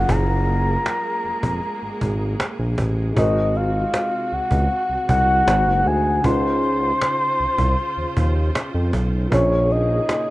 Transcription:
0.00 2.74 F3 medium
0.00 2.72 F#3 medium
0.00 5.43 G#3 medium
0.00 3.13 A#3 medium
0.00 2.73 C#4 medium
0.00 2.75 G#4 medium
0.00 3.13 G#4 medium
0.00 2.76 A#4 medium
0.00 0.12 F#5 loud
0.00 downlifter medium
0.09 0.77 F#1 loud
0.09 2.79 A#5 loud
0.09 cajon bass loud
0.47 cajon slap soft
0.86 cajon slap loud
1.25 1.32 F1 soft
1.43 1.60 F1 medium
1.43 cajon bass medium
1.63 cajon slap soft
1.82 1.90 G#1 soft
2.01 2.35 G#1 medium
2.01 cajon bass medium
2.40 cajon slap loud
2.59 2.76 A#1 medium
2.78 3.12 A1 medium
2.78 cajon bass medium
3.12 5.41 G#3 medium
3.12 5.42 D#4 medium
3.16 3.85 G#1 loud
3.16 5.45 C3 medium
3.16 6.21 F#4 medium
3.16 5.43 F#4 medium
3.16 5.44 A#4 medium
3.16 3.58 D#5 medium
3.16 cajon bass loud
3.21 5.45 C5 medium
3.55 4.35 F5 loud
3.55 cajon slap soft
3.94 cajon slap loud
4.32 4.40 C#2 soft
4.32 5.10 F#5 loud
4.51 4.68 C#2 loud
4.51 cajon bass medium
4.71 cajon slap soft
4.90 4.97 C2 soft
5.09 5.43 C2 medium
5.09 5.89 F#5 loud
5.09 cajon bass medium
5.45 5.64 G#1 medium
5.45 6.23 C3 medium
5.45 6.23 G#3 medium
5.45 6.23 D#4 medium
5.45 6.24 F#4 medium
5.45 6.25 A#4 medium
5.45 cajon slap loud
5.49 6.25 C5 medium
5.67 5.84 F#1 medium
5.86 6.20 D2 medium
5.86 6.27 G#5 loud
5.86 cajon slap soft
6.20 9.26 C#3 medium
6.20 10.30 C#3 medium
6.20 9.27 C#4 medium
6.20 9.29 F4 medium
6.20 9.29 C5 medium
6.24 6.92 C#2 loud
6.24 9.28 D#4 medium
6.24 9.29 F4 medium
6.24 8.94 C6 loud
6.24 cajon bass loud
6.29 9.30 C5 medium
6.63 cajon slap soft
7.02 cajon slap loud
7.40 7.47 C2 soft
7.58 7.76 C2 medium
7.58 cajon bass medium
7.78 cajon slap soft
7.97 8.05 D#2 soft
8.17 8.51 D#2 medium
8.17 cajon bass medium
8.55 cajon slap loud
8.74 8.91 F2 medium
8.93 9.27 B1 medium
8.93 cajon bass medium
9.28 10.30 A#2 medium
9.28 10.30 A#3 medium
9.32 10.00 A#1 loud
9.32 10.30 C#4 medium
9.32 10.30 G#4 medium
9.32 9.73 C#5 medium
9.32 cajon bass loud
9.36 10.30 C#5 medium
9.70 10.30 D#5 loud
9.70 cajon slap soft
10.09 cajon slap loud

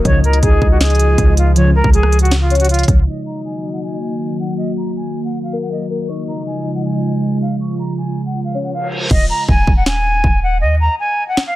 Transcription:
0.05 0.41 C#2 loud
0.05 0.21 G#2 loud
0.05 0.21 C#3 loud
0.05 3.04 C#3 medium
0.05 0.21 F3 loud
0.05 3.04 F3 medium
0.05 3.04 G#3 medium
0.05 3.04 F4 medium
0.05 0.19 C#5 medium
0.05 1.52 D#5 loud
0.05 kick loud
0.05 closed hi-hat medium
0.24 0.38 A#4 medium
0.24 closed hi-hat soft
0.33 closed hi-hat medium
0.43 0.61 C#2 loud
0.43 0.69 G#4 medium
0.43 kick medium
0.43 closed hi-hat medium
0.62 1.16 C#2 loud
0.62 kick loud
0.71 0.78 F#4 medium
0.81 1.34 G#4 medium
0.81 snare loud
0.81 closed hi-hat medium
0.85 closed hi-hat medium
0.90 closed hi-hat medium
0.95 closed hi-hat soft
0.99 closed hi-hat medium
1.18 1.82 C#2 loud
1.18 kick medium
1.18 closed hi-hat medium
1.37 1.52 F4 medium
1.37 closed hi-hat medium
1.56 1.72 G#2 loud
1.56 1.72 C#3 loud
1.56 1.72 F3 loud
1.56 1.70 C#5 medium
1.56 closed hi-hat medium
1.75 1.89 A#4 medium
1.84 2.84 C#2 loud
1.84 kick loud
1.94 2.20 G#4 medium
1.94 closed hi-hat medium
2.03 cross-stick medium
2.12 closed hi-hat medium
2.12 open hi-hat medium
2.19 2.36 F#4 medium
2.19 closed hi-hat medium
2.25 closed hi-hat soft
2.31 snare loud
2.31 closed hi-hat medium
2.40 2.55 F4 medium
2.50 2.69 C#5 medium
2.50 closed hi-hat soft
2.55 closed hi-hat medium
2.60 2.67 F#4 medium
2.60 closed hi-hat medium
2.64 closed hi-hat medium
2.69 2.84 F4 medium
2.69 closed hi-hat medium
2.74 closed hi-hat medium
2.79 closed hi-hat medium
2.83 closed hi-hat medium
2.88 3.06 C#2 loud
2.88 kick loud
2.88 closed hi-hat medium
3.07 6.06 D#3 medium
3.07 6.06 F#3 medium
3.07 6.06 A#3 medium
3.07 6.06 F#4 medium
3.07 4.54 D#5 loud
3.07 3.22 D#5 medium
3.26 3.40 A#5 medium
3.26 closed hi-hat medium
3.45 3.71 G#5 medium
3.73 3.80 F#5 medium
3.82 4.36 G#5 medium
3.82 closed hi-hat medium
4.01 closed hi-hat medium
4.20 closed hi-hat medium
4.40 4.54 F#5 medium
4.49 closed hi-hat medium
4.57 4.72 D#5 medium
4.57 closed hi-hat medium
4.77 4.91 A#5 medium
4.77 closed hi-hat medium
4.96 5.22 G#5 medium
4.96 closed hi-hat medium
5.14 closed hi-hat medium
5.24 5.38 F#5 medium
5.34 closed hi-hat medium
5.43 5.57 F5 medium
5.43 closed hi-hat soft
5.52 5.88 A#4 medium
5.52 closed hi-hat medium
5.62 5.69 F#5 medium
5.71 5.86 D#5 medium
5.71 closed hi-hat medium
5.90 6.08 A#4 medium
5.90 closed hi-hat soft
6.00 closed hi-hat medium
6.09 9.08 C#3 medium
6.09 9.08 F3 medium
6.09 9.08 G#3 medium
6.09 9.08 F4 medium
6.09 7.56 D#5 loud
6.09 6.23 C#6 medium
6.09 closed hi-hat medium
6.28 6.42 A#5 medium
6.28 closed hi-hat medium
6.47 6.73 G#5 medium
6.47 closed hi-hat medium
6.65 closed hi-hat medium
6.75 6.82 F#5 medium
6.84 7.38 G#5 medium
6.84 closed hi-hat medium
7.03 closed hi-hat medium
7.22 closed hi-hat medium
7.41 7.56 F5 medium
7.41 closed hi-hat soft
7.50 closed hi-hat medium
7.60 7.74 C#6 medium
7.60 closed hi-hat medium
7.79 7.93 A#5 medium
7.97 8.24 G#5 medium
7.97 closed hi-hat medium
8.16 closed hi-hat medium
8.25 8.40 F#5 medium
8.35 closed hi-hat medium
8.35 reverse cymbal medium
8.40 closed hi-hat medium
8.44 8.59 F5 medium
8.44 closed hi-hat medium
8.50 closed hi-hat medium
8.54 8.72 C#5 medium
8.54 closed hi-hat medium
8.64 8.71 F#5 medium
8.73 8.87 F5 medium
8.73 closed hi-hat medium
8.92 closed hi-hat medium
9.11 9.29 D#1 loud
9.11 9.25 D#5 medium
9.11 kick loud
9.11 crash medium
9.30 9.44 A#5 medium
9.48 9.67 D#1 loud
9.48 9.75 G#5 medium
9.48 kick medium
9.67 10.22 D#1 loud
9.67 kick loud
9.76 9.84 F#5 medium
9.86 10.40 G#5 loud
9.86 snare loud
10.24 10.63 D#1 loud
10.24 kick medium
10.43 10.57 F#5 medium
10.61 10.89 D#2 loud
10.61 10.75 D#5 medium
10.80 10.95 A#5 medium
10.99 11.26 G#5 loud
11.28 11.42 F#5 medium
11.37 snare loud
11.46 11.56 F5 medium

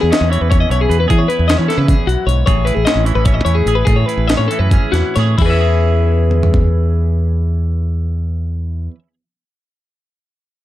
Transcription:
0.00 1.06 E2 medium
0.00 0.10 E2 medium
0.00 0.30 E4 soft
0.00 0.89 G#4 medium
0.00 0.11 G#4 medium
0.10 0.49 C#4 medium
0.10 0.31 D#5 medium
0.10 snare loud
0.10 closed hi-hat medium
0.21 0.37 E2 medium
0.30 1.68 E3 medium
0.30 0.70 E4 soft
0.30 0.41 C#5 medium
0.30 closed hi-hat soft
0.41 0.65 E2 medium
0.41 0.50 B4 medium
0.50 1.49 C#4 medium
0.50 0.60 C#5 medium
0.50 kick loud
0.50 closed hi-hat medium
0.60 0.70 D#5 medium
0.70 0.86 B1 medium
0.70 1.09 B2 medium
0.70 1.29 E4 soft
0.70 0.80 C#5 medium
0.70 closed hi-hat soft
0.81 1.00 G#4 medium
0.90 1.05 E2 medium
0.90 1.07 B4 medium
0.90 closed hi-hat medium
1.00 1.09 B4 medium
1.07 1.86 E2 medium
1.07 1.26 E3 medium
1.07 2.46 G#4 medium
1.07 1.19 G#4 medium
1.07 kick medium
1.07 closed hi-hat medium
1.18 1.28 C#5 medium
1.28 1.69 E4 medium
1.28 1.48 B4 medium
1.28 closed hi-hat medium
1.39 1.55 E2 medium
1.48 2.86 C#4 medium
1.48 1.58 D#5 medium
1.48 snare loud
1.48 closed hi-hat medium
1.58 1.66 E3 medium
1.58 1.68 C#5 medium
1.68 3.05 E3 medium
1.68 2.66 E4 soft
1.68 1.78 A4 medium
1.68 snare soft
1.68 closed hi-hat medium
1.78 1.93 C#3 medium
1.78 1.87 B4 medium
1.87 2.07 E2 medium
1.87 2.07 G#4 medium
1.87 kick medium
1.87 closed hi-hat medium
2.07 2.15 B1 medium
2.07 2.26 F#2 medium
2.07 2.27 F#4 medium
2.07 closed hi-hat medium
2.27 2.42 B1 medium
2.27 2.46 G#2 medium
2.27 2.45 C#5 medium
2.27 closed hi-hat medium
2.46 2.71 A1 medium
2.46 3.84 A2 medium
2.46 3.67 G#4 medium
2.46 2.66 C#5 medium
2.46 kick loud
2.46 closed hi-hat medium
2.65 3.06 E4 medium
2.65 2.75 B4 medium
2.65 closed hi-hat medium
2.75 2.84 A1 medium
2.75 2.85 G#4 medium
2.85 3.26 C#4 medium
2.85 3.05 D#5 medium
2.85 snare medium
2.85 closed hi-hat medium
2.95 3.11 A1 medium
3.05 3.43 E3 medium
3.05 3.45 E4 soft
3.05 3.15 C#5 medium
3.05 closed hi-hat medium
3.15 3.40 A1 medium
3.15 3.25 B4 medium
3.25 4.29 C#4 medium
3.25 3.34 C#5 medium
3.25 kick medium
3.25 closed hi-hat medium
3.34 3.44 D#5 medium
3.45 3.62 E2 medium
3.45 4.51 E3 medium
3.45 4.07 E4 medium
3.45 3.55 C#5 medium
3.45 closed hi-hat medium
3.55 3.75 G#4 medium
3.66 3.82 A1 medium
3.66 3.87 G#4 medium
3.66 closed hi-hat medium
3.75 3.86 B4 medium
3.85 5.35 A2 medium
3.85 4.03 A2 medium
3.85 3.96 G#4 medium
3.85 5.15 G#4 medium
3.85 kick medium
3.85 closed hi-hat medium
3.96 4.06 C#5 medium
4.06 4.50 E4 medium
4.06 4.28 B4 medium
4.06 closed hi-hat soft
4.18 4.34 A1 medium
4.28 4.71 C#4 medium
4.28 4.37 D#5 medium
4.28 snare loud
4.28 closed hi-hat medium
4.37 4.47 A2 medium
4.37 4.49 C#5 medium
4.48 4.93 E3 medium
4.48 4.59 A4 medium
4.48 closed hi-hat medium
4.52 4.93 E4 soft
4.59 4.77 F#2 medium
4.59 4.70 B4 medium
4.70 5.36 C#4 medium
4.70 4.92 G#4 medium
4.70 kick medium
4.70 closed hi-hat medium
4.92 5.02 E2 medium
4.92 5.36 E3 medium
4.92 5.36 E4 soft
4.92 5.15 F#4 medium
4.92 snare soft
4.92 closed hi-hat medium
5.16 5.34 A2 medium
5.16 5.37 G#4 medium
5.16 5.37 C#5 medium
5.16 snare soft
5.16 closed hi-hat medium
5.38 8.87 E2 medium
5.38 8.93 E2 medium
5.38 5.50 E4 medium
5.38 8.91 G#4 medium
5.38 kick medium
5.38 crash medium
5.45 8.98 E3 medium
5.45 8.95 B4 medium
5.50 9.03 C#4 medium
5.50 8.99 E5 medium
5.55 9.08 E4 medium
5.61 9.14 G#4 medium
6.31 mid tom soft
6.43 floor tom medium
6.54 kick medium

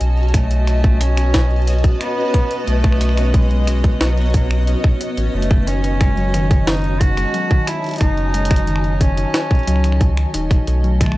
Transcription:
0.00 1.92 B1 loud
0.00 6.75 B3 medium
0.00 11.17 C#4 medium
0.00 11.17 F#4 medium
0.00 11.17 C#5 medium
0.00 11.17 D#5 medium
0.00 1.12 G#5 medium
0.00 2.09 A5 medium
0.00 closed hi-hat medium
0.17 closed hi-hat soft
0.23 closed hi-hat soft
0.28 closed hi-hat soft
0.34 1.02 A3 medium
0.34 finger snap medium
0.34 kick loud
0.34 closed hi-hat medium
0.51 closed hi-hat medium
0.59 6.50 B4 medium
0.67 finger snap soft
0.67 closed hi-hat medium
0.84 kick loud
0.84 closed hi-hat soft
1.01 1.67 C#4 loud
1.01 closed hi-hat loud
1.17 finger snap medium
1.17 closed hi-hat medium
1.34 kick loud
1.34 snare loud
1.34 closed hi-hat medium
1.51 closed hi-hat soft
1.56 closed hi-hat soft
1.62 closed hi-hat soft
1.67 closed hi-hat medium
1.73 closed hi-hat soft
1.78 closed hi-hat soft
1.84 kick loud
1.84 closed hi-hat medium
2.01 2.63 B3 loud
2.01 finger snap medium
2.01 closed hi-hat medium
2.34 finger snap medium
2.34 kick loud
2.34 closed hi-hat medium
2.51 closed hi-hat medium
2.67 3.92 B1 loud
2.67 3.36 A3 loud
2.67 closed hi-hat medium
2.84 finger snap medium
2.84 kick loud
2.84 closed hi-hat soft
2.92 finger snap medium
3.01 finger snap soft
3.01 closed hi-hat medium
3.09 finger snap soft
3.17 finger snap soft
3.17 closed hi-hat medium
3.34 4.02 G#3 loud
3.34 kick loud
3.34 closed hi-hat medium
3.51 closed hi-hat soft
3.67 finger snap medium
3.67 closed hi-hat medium
3.84 kick loud
3.84 closed hi-hat medium
4.01 4.75 B1 loud
4.01 5.01 F#3 medium
4.01 finger snap soft
4.01 snare loud
4.01 closed hi-hat medium
4.17 closed hi-hat soft
4.22 closed hi-hat soft
4.26 closed hi-hat soft
4.30 closed hi-hat soft
4.34 kick loud
4.34 closed hi-hat medium
4.51 finger snap medium
4.67 closed hi-hat medium
4.84 finger snap medium
4.84 kick loud
5.01 closed hi-hat medium
5.17 5.29 A1 medium
5.17 closed hi-hat medium
5.34 7.25 F#1 loud
5.34 5.69 A3 loud
5.42 closed hi-hat medium
5.51 5.63 D#3 medium
5.51 finger snap soft
5.51 kick loud
5.51 closed hi-hat soft
5.67 6.69 C#4 loud
5.67 5.80 D#4 medium
5.67 closed hi-hat medium
5.84 closed hi-hat soft
6.01 6.08 G#3 medium
6.01 finger snap medium
6.01 kick loud
6.01 closed hi-hat soft
6.09 11.17 G#5 medium
6.09 11.17 A5 medium
6.17 6.33 F#3 loud
6.17 closed hi-hat soft
6.34 6.46 D#3 loud
6.34 finger snap medium
6.34 closed hi-hat medium
6.51 kick loud
6.51 closed hi-hat medium
6.67 6.80 D#3 medium
6.67 7.02 D#4 loud
6.67 snare loud
6.67 closed hi-hat soft
6.70 closed hi-hat soft
6.72 closed hi-hat soft
6.75 closed hi-hat soft
6.77 closed hi-hat soft
6.79 closed hi-hat soft
6.82 6.96 D#4 medium
6.82 closed hi-hat soft
6.84 closed hi-hat soft
7.01 7.69 F#4 loud
7.01 kick loud
7.01 closed hi-hat medium
7.17 7.25 G#3 medium
7.17 finger snap soft
7.17 closed hi-hat soft
7.34 7.50 F#3 loud
7.34 closed hi-hat medium
7.51 7.63 D#3 loud
7.51 kick loud
7.51 closed hi-hat soft
7.67 8.00 E4 loud
7.67 finger snap medium
7.67 closed hi-hat medium
7.84 7.96 D#3 medium
7.84 closed hi-hat soft
7.86 closed hi-hat soft
7.89 closed hi-hat soft
7.91 closed hi-hat soft
7.94 closed hi-hat soft
7.96 closed hi-hat soft
7.98 9.26 F#1 loud
7.98 8.13 D#4 medium
7.98 finger snap medium
7.98 kick loud
7.98 closed hi-hat soft
8.01 9.02 D#4 loud
8.01 closed hi-hat medium
8.17 closed hi-hat soft
8.34 8.41 G#3 medium
8.34 closed hi-hat medium
8.45 closed hi-hat medium
8.51 8.67 F#3 loud
8.51 finger snap medium
8.51 kick loud
8.51 closed hi-hat medium
8.56 closed hi-hat medium
8.67 8.80 D#3 loud
8.67 closed hi-hat soft
8.76 finger snap medium
8.84 closed hi-hat soft
9.01 9.13 D#3 medium
9.01 10.34 C#4 loud
9.01 kick loud
9.01 closed hi-hat medium
9.17 9.30 D#4 medium
9.17 closed hi-hat soft
9.34 finger snap medium
9.34 snare loud
9.34 closed hi-hat medium
9.51 9.58 G#3 medium
9.51 kick loud
9.51 closed hi-hat soft
9.55 closed hi-hat soft
9.59 closed hi-hat soft
9.63 closed hi-hat soft
9.67 10.25 C#2 medium
9.67 9.83 F#3 loud
9.67 finger snap soft
9.67 closed hi-hat medium
9.76 finger snap soft
9.76 closed hi-hat soft
9.80 closed hi-hat soft
9.84 9.96 D#3 loud
9.84 finger snap soft
9.84 closed hi-hat soft
9.92 finger snap soft
10.01 kick loud
10.01 closed hi-hat medium
10.17 10.30 D#3 medium
10.17 finger snap medium
10.17 closed hi-hat soft
10.34 10.57 D#1 medium
10.34 10.46 D#4 medium
10.34 closed hi-hat medium
10.51 finger snap medium
10.51 kick loud
10.51 closed hi-hat soft
10.67 11.17 B1 loud
10.67 10.75 A3 medium
10.67 11.17 B3 medium
10.67 closed hi-hat medium
10.84 11.00 F#3 loud
10.84 closed hi-hat soft
11.01 11.13 D#3 loud
11.01 11.17 A3 medium
11.01 finger snap medium
11.01 kick loud
11.01 closed hi-hat medium
11.06 finger snap medium
11.12 finger snap medium

